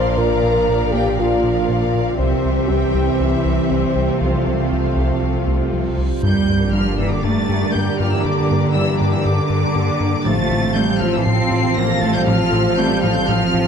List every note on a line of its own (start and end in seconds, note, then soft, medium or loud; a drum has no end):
0.00 2.19 A#1 medium
0.00 2.19 A#2 medium
0.00 2.03 F3 medium
0.00 2.15 F3 medium
0.00 2.20 F3 medium
0.00 2.03 D4 medium
0.00 2.20 F4 medium
0.00 2.15 A#4 medium
0.00 2.19 A#4 medium
0.00 0.18 C5 medium
0.00 2.16 D5 medium
0.00 2.19 D5 medium
0.00 2.15 F5 medium
0.00 0.17 C6 medium
0.17 0.33 A#2 medium
0.17 0.33 A#3 medium
0.17 0.93 A#4 loud
0.17 0.94 A#5 medium
0.43 0.58 A#2 medium
0.68 0.84 A#2 medium
0.68 0.83 A#4 medium
0.92 1.08 A#2 medium
0.92 1.09 A#3 medium
0.92 1.18 G4 medium
0.92 1.18 G5 medium
1.19 1.34 A#2 medium
1.19 2.20 F4 medium
1.19 1.34 A#4 medium
1.19 2.18 F5 medium
1.44 1.59 A#2 medium
1.44 1.59 D4 medium
1.68 1.84 A#2 medium
1.68 1.84 A#3 medium
1.94 2.10 A#2 medium
1.94 2.09 A#4 medium
2.18 2.34 C2 medium
2.18 5.99 C2 medium
2.18 2.34 C3 medium
2.18 5.99 C3 medium
2.18 4.17 E3 medium
2.18 4.22 E3 medium
2.18 2.68 C4 medium
2.18 6.03 C4 medium
2.18 6.23 C4 medium
2.18 5.98 C4 medium
2.18 4.17 G4 medium
2.18 4.22 G4 medium
2.18 2.69 C5 medium
2.18 6.23 C5 medium
2.18 5.99 C5 medium
2.18 4.17 E5 medium
2.45 2.60 C2 medium
2.68 2.85 C2 medium
2.68 2.85 C4 medium
2.68 3.19 G4 medium
2.68 3.19 G5 medium
2.94 3.10 C2 medium
2.94 3.10 C3 medium
3.20 3.36 C2 medium
3.20 3.35 C4 medium
3.20 3.70 E4 medium
3.20 3.71 E5 medium
3.45 3.60 C2 medium
3.45 3.60 E3 medium
3.70 3.86 C2 medium
3.70 3.85 C3 medium
3.70 4.08 C4 medium
3.70 4.09 C5 medium
3.95 4.11 C2 medium
3.95 4.11 C4 medium
4.09 4.22 A#3 medium
4.09 4.21 A#4 medium
4.19 4.36 C2 medium
4.19 6.22 F3 medium
4.19 4.36 F3 medium
4.19 5.95 F3 soft
4.19 5.98 A3 medium
4.19 6.23 F4 medium
4.19 5.99 F4 soft
4.19 5.95 A4 medium
4.19 6.03 F5 medium
4.19 reverse cymbal medium
4.47 4.62 C2 medium
4.72 4.87 C2 medium
4.72 4.87 F4 medium
4.96 5.12 C2 medium
4.96 5.11 F3 medium
5.22 5.37 C2 medium
5.22 5.37 F4 medium
5.47 5.62 C2 medium
5.47 5.63 A3 medium
5.73 5.88 C2 medium
5.73 5.88 F3 medium
5.98 6.13 C2 medium
5.98 6.13 F4 medium
6.21 6.38 G2 medium
6.21 10.22 G2 medium
6.21 10.22 A#2 medium
6.21 10.21 D3 medium
6.21 10.22 D3 medium
6.21 10.22 G3 medium
6.21 6.38 G3 medium
6.21 6.70 G3 medium
6.21 10.22 D4 medium
6.21 10.21 G4 medium
6.21 10.22 G4 medium
6.21 10.22 A#4 medium
6.21 10.22 D5 medium
6.21 10.22 A#5 medium
6.21 6.70 G6 medium
6.21 sub drop medium
6.48 6.63 G2 medium
6.48 6.64 A#3 medium
6.73 6.99 F3 medium
6.73 6.88 G3 medium
6.73 6.89 D4 medium
6.73 6.99 F6 medium
6.99 7.14 G2 medium
6.99 7.11 E3 medium
6.99 7.14 A#3 medium
6.99 7.11 E6 medium
7.11 7.24 D3 medium
7.11 7.24 D6 medium
7.23 7.39 G2 medium
7.23 7.39 G3 medium
7.23 7.74 A3 medium
7.23 7.74 A6 medium
7.49 7.64 G2 medium
7.49 7.64 G4 medium
7.73 7.90 G2 medium
7.73 7.99 G3 medium
7.73 7.89 A#3 medium
7.73 7.99 G6 medium
7.99 8.15 G2 medium
7.99 8.12 F3 medium
7.99 8.15 A#3 medium
7.99 8.12 F6 medium
8.12 8.25 E3 medium
8.12 8.25 E6 medium
8.24 8.40 G2 loud
8.24 8.76 D3 medium
8.24 8.40 G3 medium
8.24 8.75 D6 medium
8.50 8.66 G2 medium
8.50 8.65 A#3 medium
8.73 9.00 E3 medium
8.73 8.90 G3 medium
8.73 8.90 D4 medium
8.73 8.99 E6 medium
8.99 9.16 G2 medium
8.99 9.13 D3 medium
8.99 9.16 A#3 medium
8.99 9.12 D6 medium
9.12 9.26 E3 medium
9.12 9.25 E6 medium
9.24 9.41 G2 loud
9.24 10.26 D3 medium
9.24 9.40 G3 loud
9.24 10.26 D6 loud
9.50 9.65 G2 medium
9.50 9.66 G4 medium
9.75 9.91 G2 medium
9.75 9.90 A#3 medium
10.00 10.16 G2 medium
10.00 10.15 A#3 medium
10.25 13.68 A1 medium
10.25 10.41 A2 loud
10.25 13.68 C3 medium
10.25 10.40 F3 loud
10.25 13.68 F3 medium
10.25 10.75 A3 medium
10.25 13.68 C4 medium
10.25 13.68 F4 medium
10.25 13.68 A4 medium
10.25 13.68 C5 medium
10.25 13.68 F5 medium
10.25 10.76 A6 loud
10.50 10.66 A2 medium
10.50 10.66 A3 medium
10.75 11.02 G3 medium
10.75 10.91 A3 medium
10.75 10.91 C4 medium
10.75 11.02 G6 loud
10.99 11.17 A2 medium
10.99 11.14 F3 medium
10.99 11.16 A3 medium
10.99 11.13 F6 medium
11.12 11.27 E3 medium
11.12 11.26 E6 medium
11.25 11.42 A2 loud
11.25 11.42 F3 loud
11.25 11.77 C4 medium
11.25 11.75 C7 loud
11.51 11.67 A2 medium
11.51 11.67 F4 medium
11.77 11.93 A2 medium
11.77 11.93 A3 medium
11.77 12.03 A#3 medium
11.77 12.02 A#6 loud
12.01 12.18 A2 medium
12.01 12.17 A3 medium
12.01 12.15 A3 medium
12.01 12.14 A6 loud
12.15 12.28 G3 medium
12.15 12.28 G6 medium
12.26 12.43 A2 loud
12.26 12.42 F3 loud
12.26 12.78 F3 medium
12.26 12.77 F6 loud
12.52 12.68 A2 medium
12.52 12.67 A3 medium
12.77 13.03 G3 medium
12.77 12.93 A3 medium
12.77 12.93 C4 medium
12.77 13.04 G6 loud
13.03 13.19 A2 medium
13.03 13.16 F3 medium
13.03 13.18 A3 medium
13.03 13.15 F6 loud
13.15 13.28 G3 medium
13.15 13.28 G6 loud
13.28 13.44 A2 loud
13.28 13.44 F3 loud
13.28 13.68 F3 loud
13.28 13.68 F6 loud
13.54 13.68 A2 medium
13.54 13.68 F4 medium